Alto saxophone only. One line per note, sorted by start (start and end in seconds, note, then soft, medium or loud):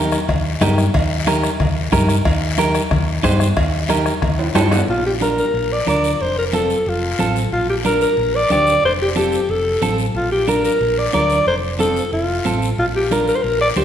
4.90 5.04 F4 medium
5.06 5.13 G4 medium
5.23 5.30 A#4 medium
5.39 5.74 A#4 medium
5.72 5.88 D5 medium
5.89 6.23 D5 medium
6.22 6.37 C5 medium
6.38 6.45 A#4 medium
6.55 6.90 A4 medium
6.88 7.36 F4 medium
7.53 7.67 F4 medium
7.70 7.77 G4 medium
7.86 8.01 A#4 medium
8.02 8.37 A#4 medium
8.36 8.51 D5 medium
8.52 8.82 D5 medium
8.85 8.92 C5 medium
9.02 9.09 G4 medium
9.18 9.52 G4 medium
9.50 9.99 A4 medium
10.16 10.31 F4 medium
10.32 10.50 G4 medium
10.49 10.64 A#4 medium
10.65 11.00 A#4 medium
10.98 11.13 D5 medium
11.14 11.44 D5 medium
11.47 11.55 C5 medium
11.80 12.10 A4 medium
12.13 12.59 F4 medium
12.79 12.86 F4 medium
12.96 13.14 G4 medium
13.12 13.28 A#4 medium
13.28 13.37 A#4 medium
13.35 13.44 C5 medium
13.43 13.61 A#4 medium
13.61 13.68 D5 medium
13.77 13.85 G4 medium